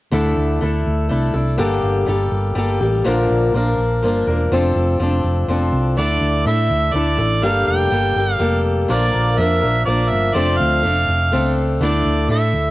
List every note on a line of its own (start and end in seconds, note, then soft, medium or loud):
0.12 0.35 D2 medium
0.12 0.61 D3 medium
0.12 0.60 A3 medium
0.12 0.62 D4 medium
0.12 0.62 E4 medium
0.12 0.63 A4 medium
0.37 0.60 D2 medium
0.61 0.84 D2 medium
0.61 1.08 A3 medium
0.61 1.10 D4 medium
0.61 1.10 E4 medium
0.61 1.11 A4 medium
0.87 1.09 D2 medium
1.09 1.33 C2 medium
1.09 1.34 A3 medium
1.09 1.34 D4 medium
1.09 1.34 E4 medium
1.09 1.32 A4 medium
1.34 1.57 C2 medium
1.34 1.58 D4 soft
1.34 1.59 E4 soft
1.34 1.58 A4 medium
1.58 1.81 G1 medium
1.58 2.07 G2 medium
1.58 2.07 D3 medium
1.58 2.05 G3 medium
1.58 2.07 A#3 medium
1.58 2.07 G4 medium
1.58 2.08 A4 medium
1.83 2.06 G1 medium
2.06 2.30 G1 medium
2.06 2.54 G3 medium
2.06 2.55 A#3 medium
2.06 2.57 G4 medium
2.06 2.57 A4 medium
2.32 2.54 G1 medium
2.55 2.78 G1 medium
2.55 2.80 G3 medium
2.55 2.81 A#3 medium
2.55 2.79 G4 medium
2.55 2.79 A4 medium
2.80 3.03 A1 medium
2.80 3.05 G3 soft
2.80 3.05 A#3 soft
2.80 3.05 G4 soft
2.80 3.05 A4 soft
3.04 3.28 A#1 medium
3.04 3.53 A#2 medium
3.04 3.54 D3 medium
3.04 3.54 F3 medium
3.04 3.54 A#3 medium
3.04 3.55 D4 medium
3.04 3.55 A#4 medium
3.30 3.52 A#1 medium
3.54 3.76 A#1 medium
3.54 4.01 F3 medium
3.54 4.02 A#3 medium
3.54 4.04 D4 medium
3.54 4.04 A#4 medium
3.78 4.00 A#1 medium
4.03 4.26 G1 medium
4.03 4.27 F3 medium
4.03 4.27 A#3 medium
4.03 4.27 D4 medium
4.03 4.26 A#4 medium
4.27 4.49 E1 medium
4.27 4.50 F3 soft
4.27 4.52 A#3 soft
4.27 4.52 D4 soft
4.27 4.51 A#4 soft
4.51 4.74 F1 medium
4.51 4.98 F3 medium
4.51 5.00 C4 medium
4.51 5.01 D4 medium
4.51 5.01 A4 medium
4.75 4.98 F1 medium
5.00 5.22 F1 medium
5.00 5.47 F3 medium
5.00 5.48 C4 medium
5.00 5.49 D4 medium
5.00 5.50 A4 medium
5.24 5.47 F1 medium
5.48 5.71 F1 medium
5.48 5.97 F3 medium
5.48 5.98 C4 medium
5.48 5.97 D4 medium
5.48 5.98 A4 medium
5.72 5.95 C2 medium
5.97 6.19 D2 medium
5.97 6.46 D3 medium
5.97 6.45 A3 medium
5.97 6.46 D4 medium
5.97 6.46 E4 medium
5.97 6.48 A4 medium
5.97 6.43 D5 medium
6.21 6.44 D2 medium
6.45 6.68 A2 medium
6.45 6.92 A3 medium
6.45 6.94 D4 medium
6.45 6.94 E4 medium
6.45 6.95 A4 medium
6.45 6.95 E5 medium
6.70 6.92 D2 medium
6.93 7.17 D2 medium
6.93 7.18 A3 medium
6.93 7.19 D4 medium
6.93 7.19 E4 medium
6.93 7.17 A4 medium
6.93 7.45 D5 medium
7.18 7.40 A1 medium
7.18 7.43 D4 soft
7.18 7.43 E4 soft
7.18 7.43 A4 soft
7.42 7.65 G1 medium
7.42 7.91 G2 medium
7.42 7.92 D3 medium
7.42 7.89 G3 medium
7.42 7.91 A#3 medium
7.42 7.91 G4 medium
7.42 7.92 A4 medium
7.42 7.67 F5 medium
7.68 7.90 F1 medium
7.68 8.34 G5 loud
7.90 8.14 G1 medium
7.90 8.15 G3 medium
7.90 8.16 A#3 medium
7.90 8.16 G4 medium
7.90 8.15 A4 medium
8.16 8.38 G1 medium
8.16 8.38 G3 soft
8.16 8.38 A#3 soft
8.16 8.40 G4 soft
8.16 8.40 A4 soft
8.34 8.61 F5 loud
8.39 8.85 F1 medium
8.39 8.88 G3 medium
8.39 8.88 A#3 medium
8.39 8.89 G4 medium
8.39 8.90 A4 medium
8.88 9.12 A#1 medium
8.88 9.37 A#2 medium
8.88 9.38 D3 medium
8.88 9.36 F3 medium
8.88 9.37 A#3 medium
8.88 9.39 D4 medium
8.88 9.38 A#4 medium
8.88 9.40 D5 medium
9.14 9.36 A#1 medium
9.37 9.60 F2 medium
9.37 9.62 F3 soft
9.37 9.62 A#3 medium
9.37 9.62 D4 medium
9.37 9.60 A#4 medium
9.37 9.85 E5 medium
9.61 9.85 A#1 medium
9.61 9.85 F3 soft
9.61 9.86 A#3 soft
9.61 9.87 D4 soft
9.61 9.86 A#4 soft
9.85 10.09 A#1 medium
9.85 10.33 F3 medium
9.85 10.35 A#3 medium
9.85 10.36 D4 medium
9.85 10.36 A#4 medium
9.85 10.12 D5 medium
10.10 10.34 G1 medium
10.10 10.36 E5 medium
10.34 10.58 F1 medium
10.34 10.83 F3 medium
10.34 10.82 A3 medium
10.34 10.82 C4 medium
10.34 10.84 D4 medium
10.34 10.85 A4 medium
10.34 10.59 D5 medium
10.57 10.82 D2 medium
10.57 11.56 F5 medium
10.83 11.06 F1 medium
10.83 11.32 A3 medium
10.83 11.32 C4 medium
10.83 11.33 D4 medium
10.83 11.34 A4 medium
11.08 11.30 F1 medium
11.32 11.78 C#2 medium
11.32 11.81 A3 medium
11.32 11.81 C4 medium
11.32 11.82 D4 medium
11.32 11.83 A4 medium
11.81 12.03 D2 medium
11.81 12.30 D3 medium
11.81 12.28 A3 medium
11.81 12.30 D4 medium
11.81 12.30 E4 medium
11.81 12.31 A4 medium
11.81 12.26 D5 medium
12.05 12.28 D2 medium
12.29 12.51 A2 medium
12.29 12.71 A3 medium
12.29 12.71 D4 soft
12.29 12.71 E4 medium
12.29 12.71 A4 medium
12.29 12.71 E5 medium
12.53 12.71 D2 medium